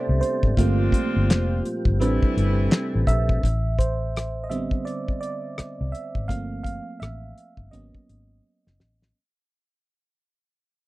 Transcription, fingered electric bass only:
0.09 0.20 C2 medium
0.44 0.56 G#1 medium
0.58 0.88 G1 loud
1.16 1.30 G1 medium
1.30 1.60 F1 medium
1.86 2.01 G1 medium
2.01 2.20 A1 loud
2.23 muted fingered electric bass stroke soft
2.37 2.67 G1 medium
2.95 3.06 A1 medium
3.08 3.38 A#1 medium
3.44 4.69 A1 loud
5.59 muted fingered electric bass stroke soft
5.81 5.92 C2 medium
6.16 6.30 G#1 medium
6.30 6.79 G1 medium
7.02 7.32 A1 medium
7.58 7.70 G1 medium
7.74 7.91 G#1 medium
8.09 8.39 G#1 medium
8.67 8.78 F#1 medium
8.81 9.11 A1 medium

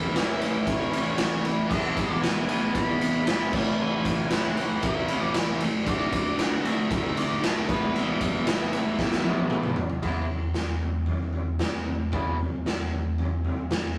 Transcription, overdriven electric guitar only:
0.00 0.11 A2 medium
0.00 0.14 E3 medium
0.00 0.14 A3 loud
0.00 0.15 C#4 medium
0.00 0.18 E4 loud
0.12 0.90 A2 medium
0.12 0.94 E3 medium
0.17 0.92 A3 medium
0.17 0.90 C#4 medium
0.17 0.89 E4 medium
0.90 1.44 A3 medium
0.90 1.43 C#4 medium
0.90 1.72 E4 medium
0.95 1.45 A2 medium
0.95 1.67 E3 medium
1.68 2.50 E3 medium
1.68 2.47 G#3 medium
1.68 2.46 B3 medium
1.73 2.45 E4 medium
2.45 3.25 B3 medium
2.45 3.24 E4 medium
2.49 3.24 E3 medium
2.49 3.26 G#3 medium
3.25 3.51 E3 medium
3.25 3.51 G#3 medium
3.25 3.53 B3 medium
3.31 3.53 E4 medium
3.52 4.29 A2 medium
3.52 4.30 E3 medium
3.52 4.33 A3 loud
3.52 4.31 C#4 medium
3.58 4.32 E4 medium
4.30 5.07 A2 medium
4.30 5.08 E3 medium
4.30 5.08 A3 medium
4.30 5.09 C#4 medium
4.35 5.08 E4 medium
5.09 5.60 A3 medium
5.09 5.60 C#4 medium
5.09 5.59 E4 medium
5.13 5.62 A2 medium
5.13 5.61 E3 medium
5.85 6.62 D3 medium
5.85 6.63 A3 medium
5.85 6.64 D4 medium
5.90 6.63 F#4 medium
6.64 7.43 A3 medium
6.64 7.42 D4 medium
6.64 7.41 F#4 medium
6.69 7.41 D3 medium
7.42 7.67 D3 medium
7.42 7.68 A3 medium
7.42 7.69 D4 medium
7.47 7.70 F#4 medium
7.68 8.44 E3 medium
7.68 8.46 G#3 medium
7.68 8.47 B3 medium
7.74 8.48 E4 loud
8.45 9.23 E3 medium
8.45 9.24 G#3 medium
8.45 9.24 B3 medium
8.51 9.22 E4 medium
9.23 9.77 G#3 medium
9.23 9.76 B3 medium
9.23 9.75 E4 medium
9.29 9.78 E3 medium
10.03 10.24 E3 medium
10.03 10.24 G#3 medium
10.03 10.25 B3 medium
10.03 10.25 E4 medium
12.13 12.34 E3 medium
12.13 12.35 G#3 medium
12.13 12.35 B3 medium
12.13 12.36 E4 loud

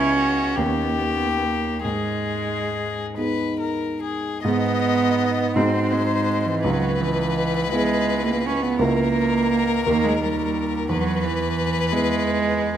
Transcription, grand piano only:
0.00 0.54 C#2 medium
0.00 0.53 B3 soft
0.00 0.54 E4 soft
0.00 0.54 G#4 soft
0.57 1.81 D#2 medium
0.57 1.81 C#4 soft
0.57 1.81 D#4 soft
0.57 1.81 G4 soft
1.84 3.14 G#2 soft
3.17 4.40 B3 soft
3.17 4.40 D#4 soft
3.17 4.41 G#4 soft
4.44 5.53 G#2 medium
4.44 5.52 B3 soft
4.44 5.53 D#4 soft
4.44 5.53 G#4 soft
5.56 6.61 G#2 medium
5.56 6.60 C4 soft
5.56 6.60 F#4 soft
5.56 6.61 G#4 soft
6.64 7.69 C#2 medium
7.72 8.76 B3 medium
7.72 8.76 E4 soft
7.72 8.77 G#4 medium
8.79 9.83 C#2 medium
8.79 9.82 A#3 soft
8.79 9.82 E4 soft
8.79 9.83 A#4 soft
9.86 10.86 D#2 medium
9.86 10.86 A#3 soft
9.86 10.86 D#4 medium
9.86 10.86 A#4 soft
10.89 11.88 E2 medium
11.91 12.77 B3 soft
11.91 12.77 E4 soft
11.91 12.77 G#4 medium

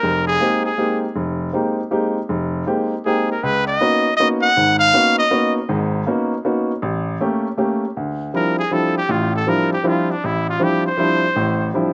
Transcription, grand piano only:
0.03 0.35 F1 medium
0.40 0.66 G#3 medium
0.40 0.66 A#3 soft
0.40 0.66 C4 soft
0.40 0.67 D#4 medium
0.40 0.67 G4 medium
0.78 1.04 G#3 medium
0.78 1.04 A#3 soft
0.78 1.04 C4 soft
0.78 1.04 D#4 soft
0.78 1.04 G4 medium
1.16 1.48 F1 medium
1.53 1.80 G#3 soft
1.53 1.80 A#3 soft
1.53 1.79 C4 soft
1.53 1.80 D#4 soft
1.53 1.80 G4 medium
1.91 2.17 G#3 medium
1.91 2.17 A#3 soft
1.91 2.17 C4 soft
1.91 2.17 D#4 soft
1.91 2.17 G4 medium
2.29 2.62 F1 medium
2.67 2.93 G#3 medium
2.67 2.93 A#3 soft
2.67 2.93 C4 soft
2.67 2.93 D#4 soft
2.67 2.93 G4 medium
3.06 3.31 G#3 soft
3.06 3.31 A#3 soft
3.06 3.32 C4 soft
3.06 3.32 D#4 soft
3.06 3.32 G4 medium
3.43 3.75 C#2 medium
3.81 4.07 A#3 soft
3.81 4.07 B3 soft
3.81 4.07 C#4 soft
3.81 4.07 D#4 soft
3.81 4.07 F#4 medium
4.19 4.45 A#3 soft
4.19 4.45 B3 soft
4.19 4.45 C#4 soft
4.19 4.45 D#4 soft
4.19 4.45 F#4 medium
4.56 4.89 G#1 medium
4.56 4.89 G#2 medium
4.93 5.20 A#3 medium
4.93 5.20 B3 soft
4.93 5.20 C#4 soft
4.93 5.20 D#4 soft
4.93 5.20 F#4 medium
5.31 5.57 A#3 medium
5.31 5.57 B3 medium
5.31 5.58 C#4 soft
5.31 5.57 D#4 soft
5.31 5.58 F#4 medium
5.69 6.02 G#1 medium
5.69 6.02 G#2 medium
6.07 6.33 A#3 medium
6.07 6.33 B3 medium
6.07 6.33 C#4 soft
6.07 6.33 D#4 soft
6.07 6.34 F#4 medium
6.45 6.71 A#3 medium
6.45 6.71 B3 soft
6.45 6.71 C#4 soft
6.45 6.71 D#4 soft
6.45 6.71 F#4 medium
6.82 7.15 A1 medium
7.21 7.47 A3 medium
7.21 7.47 A#3 soft
7.21 7.47 C#4 medium
7.21 7.47 G4 medium
7.57 7.84 A3 medium
7.57 7.84 A#3 soft
7.57 7.84 C#4 soft
7.57 7.84 G4 medium
7.97 8.29 D2 medium
8.34 8.60 F3 soft
8.34 8.60 G3 soft
8.34 8.60 C4 soft
8.34 8.60 D4 soft
8.34 8.60 E4 medium
8.71 8.97 F3 medium
8.71 8.98 G3 soft
8.71 8.98 C4 soft
8.71 8.98 D4 soft
8.71 8.98 E4 medium
9.09 9.42 A1 medium
9.09 9.42 A2 medium
9.47 9.73 F3 medium
9.47 9.73 G3 soft
9.47 9.73 C4 soft
9.47 9.73 D4 soft
9.47 9.74 E4 medium
9.84 10.10 F3 medium
9.84 10.10 G3 soft
9.84 10.11 C4 soft
9.84 10.11 D4 medium
9.84 10.11 E4 medium
10.24 10.56 A1 medium
10.60 10.86 F3 soft
10.60 10.86 G3 soft
10.60 10.86 C4 soft
10.60 10.86 D4 soft
10.60 10.86 E4 medium
10.98 11.24 F3 medium
10.98 11.24 G3 soft
10.98 11.24 C4 soft
10.98 11.24 D4 medium
10.98 11.25 E4 medium
11.36 11.68 A1 medium
11.36 11.69 A2 medium
11.74 11.93 F3 medium
11.74 11.93 G3 soft
11.74 11.93 C4 soft
11.74 11.93 D4 soft
11.74 11.93 E4 medium

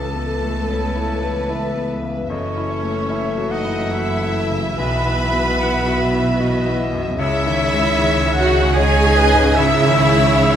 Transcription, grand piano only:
0.00 2.28 C#2 soft
0.15 0.58 B3 soft
0.41 0.85 A3 soft
0.69 1.12 B3 soft
0.95 1.39 E4 soft
1.22 1.66 B3 soft
1.49 1.92 E4 soft
1.76 2.19 B3 soft
2.02 2.30 C#3 soft
2.30 4.76 F#2 medium
2.56 3.01 E4 soft
2.84 3.28 A3 soft
3.10 3.55 E4 soft
3.37 3.82 F#4 soft
3.64 4.10 E4 soft
3.91 4.38 F#4 soft
4.22 4.68 E4 soft
4.50 4.79 C#3 soft
4.78 7.14 B1 medium
5.05 5.49 E4 medium
5.33 5.76 B3 medium
5.59 6.02 E4 soft
5.86 6.29 F#4 medium
6.12 6.55 E4 medium
6.40 6.82 F#4 medium
6.65 7.08 E4 medium
6.93 7.19 F#2 medium
7.19 9.53 C#2 medium
7.46 7.87 D#3 medium
7.73 8.14 G#3 medium
7.99 8.40 D#3 medium
8.26 8.67 C#5 medium
8.54 8.95 D#4 medium
8.80 9.21 C#5 medium
9.07 9.48 D#4 medium
9.33 9.75 G#2 medium
9.58 10.56 C#2 medium
9.86 10.28 D#3 medium
10.13 10.55 G#3 medium
10.40 10.56 D#3 medium

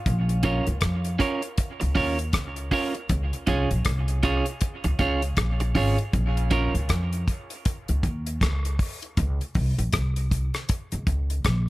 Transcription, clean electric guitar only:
0.43 0.65 C#4 medium
0.43 0.65 F4 medium
0.43 0.65 A#4 medium
0.43 0.65 C#5 medium
1.19 1.40 C#4 medium
1.19 1.41 F4 medium
1.19 1.41 A#4 medium
1.19 1.41 C#5 medium
1.80 muted clean electric guitar stroke soft
1.95 2.16 C#4 medium
1.95 2.17 F4 medium
1.95 2.17 A#4 medium
1.95 2.17 C#5 medium
2.72 2.93 C#4 medium
2.72 2.93 F4 medium
2.72 2.93 A#4 medium
2.72 2.93 C#5 medium
2.94 muted clean electric guitar stroke soft
3.47 3.68 C#4 medium
3.47 3.69 F4 medium
3.47 3.69 G#4 medium
3.47 3.69 C#5 medium
4.23 4.44 C#4 medium
4.23 4.45 F4 medium
4.23 4.45 G#4 medium
4.23 4.45 C#5 medium
4.84 muted clean electric guitar stroke soft
4.99 5.20 C#4 medium
4.99 5.21 F4 loud
4.99 5.21 G#4 loud
4.99 5.21 C#5 loud
5.60 muted clean electric guitar stroke soft
5.75 5.96 C#4 medium
5.75 5.97 F4 medium
5.75 5.97 G#4 medium
5.75 5.97 C#5 medium
6.51 6.72 C#4 medium
6.51 6.72 F4 medium
6.51 6.73 A#4 medium
6.51 6.73 C#5 medium

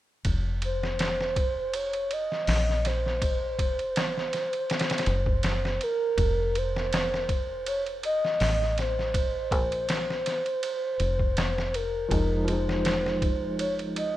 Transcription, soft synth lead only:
0.65 1.77 C5 loud
1.75 2.14 C#5 loud
2.13 2.88 D#5 loud
2.87 5.82 C5 loud
5.83 6.59 A#4 medium
6.58 7.67 C5 loud
7.68 7.82 C#5 loud
8.05 8.74 D#5 loud
8.80 11.77 C5 loud
11.75 12.48 A#4 medium
12.49 13.55 C5 loud
13.60 13.74 C#5 medium
13.97 14.17 D#5 loud

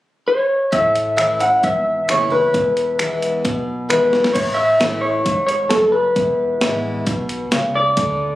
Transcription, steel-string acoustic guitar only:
0.72 1.58 A2 medium
1.16 1.39 E3 medium
1.16 1.39 A3 soft
1.16 1.39 C#4 medium
1.16 1.38 E4 medium
1.39 1.63 C#4 soft
1.39 1.62 E4 soft
1.63 2.49 E2 medium
2.08 2.30 E3 soft
2.08 2.30 A3 soft
2.08 2.30 C#4 medium
2.08 2.29 E4 medium
2.30 2.53 C#4 soft
2.30 2.52 E4 soft
2.54 3.40 E2 medium
2.99 3.42 E3 medium
2.99 3.42 G#3 medium
2.99 3.43 B3 medium
2.99 3.43 E4 medium
3.44 4.30 B2 medium
3.89 4.32 E3 medium
3.89 4.33 G#3 soft
3.89 4.33 B3 medium
3.89 4.33 E4 medium
4.35 5.21 A2 medium
4.79 5.23 E3 medium
4.79 5.23 A3 medium
4.79 5.23 C#4 medium
4.79 5.24 E4 medium
5.26 5.69 G#2 medium
5.71 6.14 F#2 medium
6.16 7.02 E2 medium
6.61 7.04 E3 medium
6.61 7.04 G#3 medium
6.61 7.05 B3 medium
6.61 7.05 E4 medium
7.06 7.49 B2 medium
7.52 7.95 C#3 medium
7.97 8.35 D3 medium

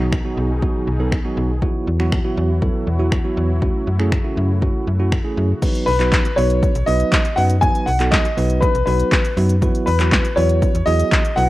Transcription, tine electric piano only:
0.00 0.17 F#3 medium
0.00 0.17 B3 medium
0.00 0.17 D#4 medium
0.00 0.17 F#4 medium
0.25 0.50 F#3 medium
0.25 0.50 B3 medium
0.25 0.50 D#4 medium
0.25 0.50 F#4 medium
0.62 0.88 F#3 medium
0.62 0.88 B3 medium
0.62 0.88 D#4 medium
0.62 0.88 F#4 loud
0.99 1.17 F#3 medium
0.99 1.17 B3 medium
0.99 1.17 D#4 medium
0.99 1.17 A4 loud
1.25 1.50 F#3 medium
1.25 1.50 B3 medium
1.25 1.50 D#4 medium
1.25 1.50 F#4 medium
1.62 1.88 F#3 medium
1.62 1.88 B3 medium
1.62 1.88 E4 medium
1.62 1.88 F#4 loud
2.00 2.17 F#3 medium
2.00 2.17 B3 medium
2.00 2.17 E4 medium
2.00 2.17 F#4 loud
2.24 2.50 F#3 medium
2.24 2.50 B3 medium
2.24 2.50 E4 medium
2.24 2.50 F#4 medium
2.62 2.88 F#3 medium
2.62 2.88 B3 medium
2.62 2.88 E4 medium
2.62 2.88 A4 loud
2.99 3.17 F#3 medium
2.99 3.17 B3 medium
2.99 3.17 E4 medium
2.99 3.17 F#4 loud
3.24 3.50 F#3 medium
3.24 3.50 B3 medium
3.24 3.50 E4 medium
3.24 3.50 F#4 medium
3.62 3.88 A3 medium
3.62 3.88 C#4 medium
3.62 3.88 E4 medium
3.62 3.88 F#4 loud
3.99 4.17 A3 medium
3.99 4.17 C#4 medium
3.99 4.17 E4 medium
3.99 4.17 G#4 loud
4.24 4.50 A3 medium
4.24 4.50 C#4 medium
4.24 4.50 E4 medium
4.24 4.50 F#4 medium
4.62 4.88 A3 medium
4.62 4.88 C#4 medium
4.62 4.88 E4 medium
4.62 4.88 F#4 medium
4.99 5.17 A3 medium
4.99 5.17 C#4 medium
4.99 5.17 E4 medium
4.99 5.17 F#4 medium
5.24 5.50 A3 medium
5.24 5.50 C#4 medium
5.24 5.50 E4 medium
5.24 5.50 G#4 medium
5.62 5.88 F#3 medium
5.62 5.88 B3 medium
5.62 5.88 D#4 medium
5.62 5.88 F#4 medium
5.62 5.88 B4 loud
5.99 6.25 F#3 medium
5.99 6.25 B3 medium
5.99 6.25 D#4 medium
5.99 6.25 F#4 medium
5.99 6.25 B4 medium
6.37 6.71 F#3 medium
6.37 6.71 B3 medium
6.37 6.71 D#4 medium
6.37 6.71 F#4 medium
6.37 6.71 B4 medium
6.87 7.21 F#3 medium
6.87 7.21 B3 medium
6.87 7.21 D#4 medium
6.87 7.21 F#4 medium
6.87 7.21 B4 medium
7.37 7.54 F#3 medium
7.37 7.54 B3 medium
7.37 7.54 D#4 medium
7.37 7.54 F#4 medium
7.37 7.54 B4 medium
7.62 7.88 F#3 medium
7.62 7.88 B3 medium
7.62 7.88 D#4 medium
7.62 7.88 F#4 medium
7.62 7.88 B4 medium
7.99 8.25 F#3 medium
7.99 8.25 B3 medium
7.99 8.25 D#4 medium
7.99 8.25 F#4 medium
7.99 8.25 A4 medium
8.37 8.71 F#3 medium
8.37 8.71 B3 medium
8.37 8.71 D#4 medium
8.37 8.71 F#4 medium
8.37 8.71 B4 medium
8.87 9.21 F#3 medium
8.87 9.21 B3 medium
8.87 9.21 D#4 medium
8.87 9.21 F#4 medium
8.87 9.21 B4 medium
9.37 9.54 F#3 medium
9.37 9.54 B3 medium
9.37 9.54 D#4 medium
9.37 9.54 F#4 medium
9.37 9.54 B4 medium
9.62 9.88 F#3 medium
9.62 9.88 B3 medium
9.62 9.88 E4 medium
9.62 9.88 F#4 medium
9.62 9.88 B4 loud
9.99 10.25 F#3 medium
9.99 10.25 B3 medium
9.99 10.25 E4 medium
9.99 10.25 F#4 medium
9.99 10.25 B4 medium
10.37 10.71 F#3 medium
10.37 10.71 B3 medium
10.37 10.71 E4 medium
10.37 10.71 F#4 medium
10.37 10.71 B4 medium
10.87 11.21 F#3 medium
10.87 11.21 B3 medium
10.87 11.21 E4 medium
10.87 11.21 F#4 medium
10.87 11.21 G#4 medium
11.37 11.49 F#3 medium
11.37 11.49 B3 medium
11.37 11.49 E4 medium
11.37 11.49 F#4 medium
11.37 11.49 B4 medium

